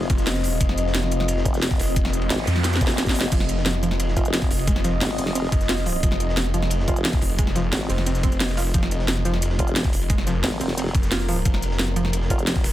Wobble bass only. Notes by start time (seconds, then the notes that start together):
1.45 F1
2.30 G#1
2.81 F1
2.98 F1
4.17 F1
5.01 G#1
5.18 F1
6.88 F1
7.73 G#1
9.59 F1
10.44 G#1
10.61 F1
12.30 F1